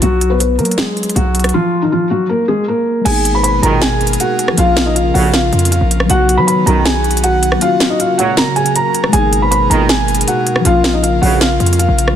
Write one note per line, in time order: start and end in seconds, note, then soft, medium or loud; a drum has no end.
0.02 0.60 B1 loud
0.02 0.29 F#3 medium
0.02 0.29 F#4 loud
0.02 closed hi-hat medium
0.21 closed hi-hat medium
0.30 0.38 B3 medium
0.30 0.37 B4 medium
0.40 0.55 B3 medium
0.40 0.55 B4 medium
0.40 closed hi-hat medium
0.58 1.13 F#3 loud
0.58 0.74 A#3 medium
0.58 0.73 A#4 medium
0.58 closed hi-hat soft
0.65 closed hi-hat soft
0.71 closed hi-hat medium
0.78 1.14 G#3 medium
0.78 1.13 G#4 medium
0.78 snare loud
0.78 closed hi-hat medium
0.97 closed hi-hat soft
1.03 closed hi-hat medium
1.09 closed hi-hat medium
1.16 1.52 B1 loud
1.16 1.52 F#3 medium
1.16 1.51 F#4 medium
1.16 closed hi-hat medium
1.35 closed hi-hat medium
1.40 closed hi-hat medium
1.44 cross-stick medium
1.44 closed hi-hat medium
1.49 closed hi-hat medium
1.54 1.81 F3 medium
1.54 1.81 F4 loud
1.82 1.90 D#3 medium
1.82 1.90 D#4 medium
1.92 2.07 F3 medium
1.92 2.07 F4 medium
2.10 2.26 F#3 medium
2.10 2.25 F#4 medium
2.29 2.45 A#3 medium
2.29 2.44 A#4 medium
2.48 2.64 G#3 medium
2.48 2.63 G#4 medium
2.68 3.04 A#3 medium
2.68 3.04 A#4 medium
3.01 4.52 G#3 medium
3.01 4.54 A#3 medium
3.05 3.60 G#1 loud
3.05 4.56 B2 medium
3.05 4.55 B3 medium
3.05 4.56 G#4 medium
3.05 3.33 G#4 medium
3.05 6.06 A#4 medium
3.05 3.32 G#5 loud
3.05 closed hi-hat medium
3.05 crash loud
3.11 4.57 D#4 medium
3.25 closed hi-hat medium
3.35 3.42 B4 medium
3.35 3.42 B5 medium
3.43 3.59 B4 medium
3.43 3.58 B5 medium
3.43 closed hi-hat medium
3.63 4.17 G#1 loud
3.63 3.90 B1 medium
3.63 3.90 A#2 loud
3.63 3.90 D#3 loud
3.63 3.78 A#4 medium
3.63 3.77 A#5 medium
3.63 closed hi-hat medium
3.82 4.18 G#4 medium
3.82 4.17 G#5 medium
3.82 snare loud
3.82 closed hi-hat medium
4.01 closed hi-hat soft
4.07 closed hi-hat medium
4.13 closed hi-hat medium
4.20 4.56 F#4 medium
4.20 4.56 F#5 medium
4.20 closed hi-hat medium
4.39 closed hi-hat medium
4.48 cross-stick medium
4.53 6.04 F3 medium
4.53 6.06 A#3 medium
4.58 5.12 A#1 loud
4.58 6.08 C#3 medium
4.58 6.07 C#4 medium
4.58 6.08 F4 medium
4.58 4.85 F4 medium
4.58 4.85 F5 loud
4.58 closed hi-hat medium
4.62 6.09 F4 medium
4.77 snare loud
4.77 closed hi-hat medium
4.86 4.94 D#4 medium
4.86 4.93 D#5 medium
4.95 5.10 F4 medium
4.95 5.10 F5 medium
4.95 closed hi-hat medium
5.14 5.42 A#1 loud
5.14 5.51 A#1 loud
5.14 5.42 F2 medium
5.14 5.42 C#3 loud
5.14 5.30 F#4 medium
5.14 5.29 F#5 medium
5.14 open hi-hat soft
5.33 5.70 F4 medium
5.33 5.69 F5 loud
5.33 snare loud
5.33 closed hi-hat medium
5.53 5.80 F2 loud
5.53 closed hi-hat soft
5.59 closed hi-hat medium
5.65 closed hi-hat medium
5.71 6.07 F4 medium
5.71 6.07 F5 medium
5.71 closed hi-hat medium
5.81 6.08 A#1 loud
5.91 closed hi-hat medium
6.00 cross-stick medium
6.05 7.55 F#3 medium
6.05 7.58 B3 medium
6.09 6.39 B1 loud
6.09 7.60 D#3 medium
6.09 7.60 B3 medium
6.09 7.59 D#4 medium
6.09 9.10 F#4 medium
6.09 6.37 F#4 medium
6.09 6.37 F#5 loud
6.09 closed hi-hat medium
6.15 7.61 F#4 medium
6.29 closed hi-hat medium
6.37 6.65 F#3 loud
6.37 6.45 B4 medium
6.37 6.45 B5 medium
6.47 6.63 B4 medium
6.47 6.62 B5 medium
6.47 closed hi-hat medium
6.66 7.57 B1 loud
6.66 6.93 B1 loud
6.66 6.93 F#2 loud
6.66 6.93 D#3 loud
6.66 6.82 A#4 medium
6.66 6.81 A#5 medium
6.66 closed hi-hat medium
6.85 7.21 G#4 medium
6.85 7.21 G#5 medium
6.85 snare loud
6.85 closed hi-hat medium
7.04 closed hi-hat soft
7.11 closed hi-hat medium
7.17 closed hi-hat medium
7.24 7.60 F#4 medium
7.24 7.59 F#5 medium
7.24 closed hi-hat medium
7.43 closed hi-hat medium
7.52 9.07 F#3 medium
7.52 cross-stick medium
7.59 9.12 C#3 medium
7.59 9.09 A#3 medium
7.59 9.11 C#4 medium
7.59 7.89 F4 medium
7.59 12.13 A#4 medium
7.59 7.88 F5 loud
7.59 closed hi-hat medium
7.65 9.12 F#4 medium
7.80 snare loud
7.80 closed hi-hat medium
7.90 7.98 D#4 medium
7.90 7.97 D#5 medium
8.00 8.15 F4 medium
8.00 8.14 F5 medium
8.00 closed hi-hat medium
8.18 8.45 C#2 loud
8.18 8.45 A#2 medium
8.18 8.45 F#3 loud
8.18 8.33 F#4 medium
8.18 8.33 F#5 medium
8.18 closed hi-hat medium
8.37 8.53 A#4 medium
8.37 8.52 A#5 medium
8.37 snare loud
8.37 closed hi-hat medium
8.56 8.71 G#4 medium
8.56 8.71 G#5 medium
8.56 closed hi-hat soft
8.66 closed hi-hat medium
8.76 9.12 A#4 medium
8.76 9.11 A#5 medium
8.76 closed hi-hat medium
8.95 closed hi-hat medium
9.04 cross-stick medium
9.09 10.60 G#3 medium
9.09 10.61 A#3 medium
9.13 9.68 G#1 loud
9.13 10.64 B2 medium
9.13 10.63 B3 medium
9.13 10.64 G#4 medium
9.13 9.40 G#4 medium
9.13 9.40 G#5 loud
9.13 closed hi-hat medium
9.18 10.65 D#4 medium
9.33 closed hi-hat medium
9.42 9.50 B4 medium
9.42 9.49 B5 medium
9.51 9.66 B4 medium
9.51 9.66 B5 medium
9.51 closed hi-hat medium
9.70 10.25 G#1 loud
9.70 9.97 B1 loud
9.70 9.97 A#2 loud
9.70 9.97 D#3 loud
9.70 9.85 A#4 medium
9.70 9.85 A#5 medium
9.70 closed hi-hat medium
9.89 10.25 G#4 medium
9.89 10.25 G#5 medium
9.89 snare loud
9.89 closed hi-hat medium
10.08 closed hi-hat soft
10.15 closed hi-hat medium
10.21 closed hi-hat medium
10.28 10.64 F#4 medium
10.28 10.63 F#5 medium
10.28 closed hi-hat medium
10.47 closed hi-hat medium
10.56 cross-stick medium
10.60 12.12 F3 medium
10.60 12.13 A#3 medium
10.65 11.20 A#1 loud
10.65 12.15 C#3 medium
10.65 12.15 C#4 medium
10.65 12.16 F4 medium
10.65 10.93 F4 medium
10.65 10.92 F5 loud
10.65 closed hi-hat medium
10.70 12.16 F4 medium
10.84 snare loud
10.84 closed hi-hat medium
10.94 11.01 D#4 medium
10.94 11.01 D#5 medium
11.03 11.18 F4 medium
11.03 11.18 F5 medium
11.03 closed hi-hat medium
11.22 11.58 A#1 loud
11.22 11.49 A#1 loud
11.22 11.49 F2 loud
11.22 11.49 C#3 loud
11.22 11.37 F#4 medium
11.22 11.37 F#5 medium
11.22 open hi-hat soft
11.41 11.77 F4 medium
11.41 11.77 F5 loud
11.41 snare loud
11.41 closed hi-hat medium
11.60 11.87 F2 loud
11.60 closed hi-hat soft
11.66 closed hi-hat medium
11.73 closed hi-hat medium
11.79 12.15 F4 medium
11.79 12.15 F5 medium
11.79 closed hi-hat medium
11.88 12.16 A#1 loud
11.98 closed hi-hat medium
12.08 cross-stick medium
12.13 12.16 F#3 medium